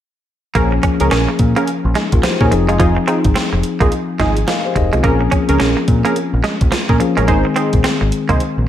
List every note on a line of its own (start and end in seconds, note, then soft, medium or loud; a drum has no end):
0.55 0.78 A#1 loud
0.55 1.37 F3 medium
0.55 0.67 A#3 medium
0.55 1.37 A#3 medium
0.55 0.73 C#4 medium
0.55 1.37 C#4 medium
0.55 0.73 G#4 medium
0.55 1.38 G#4 medium
0.55 0.74 A#4 loud
0.55 kick loud
0.55 closed hi-hat medium
0.72 muted clean electric guitar stroke soft
0.83 0.96 C#4 medium
0.83 kick medium
0.83 closed hi-hat medium
1.00 1.10 C#2 medium
1.00 1.10 C#4 medium
1.00 1.10 G#4 medium
1.00 1.11 A#4 medium
1.00 closed hi-hat medium
1.11 1.25 A#1 medium
1.11 1.24 C#4 medium
1.11 1.29 C#4 medium
1.11 1.30 G#4 medium
1.11 1.30 A#4 medium
1.11 snare loud
1.11 closed hi-hat medium
1.29 muted clean electric guitar stroke soft
1.39 1.53 A#2 medium
1.39 kick medium
1.39 closed hi-hat medium
1.56 1.64 A#3 medium
1.56 1.69 C#4 medium
1.56 1.69 G#4 medium
1.56 1.69 A#4 medium
1.56 closed hi-hat medium
1.67 closed hi-hat medium
1.85 1.94 A#1 loud
1.95 2.08 G#3 medium
1.95 2.12 D#4 medium
1.95 2.12 G#4 medium
1.95 snare medium
1.95 closed hi-hat medium
2.12 2.22 A#1 medium
2.12 2.23 F4 medium
2.12 2.23 A#4 medium
2.12 kick medium
2.12 closed hi-hat medium
2.23 2.36 F3 medium
2.23 2.40 G4 medium
2.23 2.40 C5 medium
2.23 snare loud
2.23 closed hi-hat medium
2.41 2.50 A#2 medium
2.41 2.53 C#4 medium
2.41 2.51 D#4 medium
2.41 2.53 G#4 medium
2.41 2.52 G#4 medium
2.41 2.53 A#4 medium
2.41 kick medium
2.51 2.97 F1 medium
2.51 3.42 F3 medium
2.51 3.43 C4 medium
2.51 3.43 D#4 medium
2.51 3.43 G#4 loud
2.51 muted clean electric guitar stroke soft
2.51 closed hi-hat medium
2.68 2.76 G#3 medium
2.68 2.78 D#4 medium
2.68 2.78 F4 medium
2.68 2.79 G#4 medium
2.68 closed hi-hat soft
2.79 2.92 F3 medium
2.79 2.98 D#4 medium
2.79 2.98 F4 medium
2.79 2.98 G#4 medium
2.79 kick loud
2.79 closed hi-hat medium
2.97 muted clean electric guitar stroke soft
3.07 3.20 C4 medium
3.07 3.26 D#4 medium
3.07 3.26 F4 medium
3.07 3.26 G#4 medium
3.07 closed hi-hat medium
3.24 3.34 G#1 medium
3.24 kick medium
3.24 closed hi-hat medium
3.35 3.48 C4 medium
3.35 snare loud
3.35 closed hi-hat medium
3.53 3.62 F1 medium
3.53 muted clean electric guitar stroke soft
3.63 closed hi-hat medium
3.80 3.90 A#1 medium
3.80 3.88 A#3 medium
3.80 3.93 D#4 medium
3.80 3.93 F4 medium
3.80 3.94 G#4 medium
3.80 kick medium
3.80 closed hi-hat medium
3.92 closed hi-hat medium
4.19 4.42 G#1 loud
4.19 4.32 G#3 medium
4.19 4.38 D#4 medium
4.19 4.38 F4 medium
4.19 4.38 G#4 medium
4.19 4.46 G#5 medium
4.19 kick medium
4.19 snare medium
4.19 closed hi-hat medium
4.37 closed hi-hat medium
4.48 4.60 F3 medium
4.48 4.65 A#4 medium
4.48 4.64 D#5 medium
4.48 4.74 F5 medium
4.48 snare loud
4.48 closed hi-hat medium
4.65 4.76 G4 medium
4.65 4.75 C5 medium
4.76 4.90 F1 medium
4.76 4.93 D#4 medium
4.76 4.92 G#4 medium
4.76 5.02 D#5 medium
4.76 muted clean electric guitar stroke soft
4.76 kick medium
4.76 closed hi-hat medium
4.93 5.02 B1 medium
4.93 5.01 G#3 medium
4.93 5.20 C4 medium
4.93 5.20 F4 medium
4.93 closed hi-hat soft
5.03 5.27 A#1 loud
5.03 5.86 F3 medium
5.03 5.16 A#3 medium
5.03 5.86 A#3 medium
5.03 5.22 C#4 medium
5.03 5.86 C#4 medium
5.03 5.22 G#4 medium
5.03 5.86 G#4 medium
5.03 5.22 A#4 loud
5.03 kick loud
5.03 closed hi-hat medium
5.21 muted clean electric guitar stroke soft
5.31 5.44 C#4 medium
5.31 kick medium
5.31 closed hi-hat medium
5.49 5.58 C#2 medium
5.49 5.59 C#4 medium
5.49 5.59 G#4 medium
5.49 5.59 A#4 medium
5.49 closed hi-hat medium
5.60 5.74 A#1 medium
5.60 5.72 C#4 medium
5.60 5.78 C#4 medium
5.60 5.78 G#4 medium
5.60 5.78 A#4 medium
5.60 snare medium
5.60 closed hi-hat medium
5.77 muted clean electric guitar stroke soft
5.88 6.02 A#2 medium
5.88 kick medium
5.88 closed hi-hat medium
6.05 6.13 A#3 medium
6.05 6.18 C#4 medium
6.05 6.18 G#4 medium
6.05 6.18 A#4 medium
6.05 closed hi-hat medium
6.16 closed hi-hat medium
6.34 6.42 A#1 medium
6.44 6.56 G#3 medium
6.44 snare medium
6.44 closed hi-hat medium
6.61 6.70 A#1 medium
6.61 kick medium
6.61 closed hi-hat medium
6.72 6.84 F3 medium
6.72 snare loud
6.72 closed hi-hat medium
6.89 6.98 A#2 medium
6.89 7.02 C#4 medium
6.89 7.02 G#4 medium
6.89 7.02 A#4 medium
6.89 kick loud
7.00 7.22 F3 medium
7.00 7.22 A#3 medium
7.00 7.22 C#4 medium
7.00 7.23 G#4 medium
7.00 muted clean electric guitar stroke soft
7.00 closed hi-hat medium
7.17 7.26 A1 medium
7.17 7.25 G#3 medium
7.17 7.30 C#4 medium
7.17 7.27 G#4 medium
7.17 7.30 A#4 medium
7.17 closed hi-hat soft
7.28 7.42 G#1 loud
7.28 8.10 D#3 medium
7.28 7.40 G#3 medium
7.28 8.10 G#3 medium
7.28 7.36 A#3 medium
7.28 7.46 D#4 medium
7.28 7.46 G#4 medium
7.28 8.11 G#4 medium
7.28 7.46 C5 loud
7.28 kick loud
7.28 closed hi-hat medium
7.36 8.14 C4 medium
7.45 muted clean electric guitar stroke soft
7.56 7.68 C4 medium
7.56 7.74 D#4 medium
7.56 7.74 G#4 medium
7.56 7.74 C5 medium
7.56 closed hi-hat medium
7.73 7.82 A#1 medium
7.73 kick medium
7.73 closed hi-hat medium
7.84 7.96 C4 medium
7.84 snare loud
7.84 closed hi-hat medium
8.01 8.10 G#1 medium
8.01 muted clean electric guitar stroke soft
8.12 closed hi-hat medium
8.29 8.38 C2 medium
8.29 8.37 A#3 medium
8.29 8.42 D#4 medium
8.29 8.42 G#4 medium
8.29 8.42 C5 medium
8.29 kick medium
8.29 closed hi-hat medium
8.40 closed hi-hat medium
8.58 8.67 A#1 medium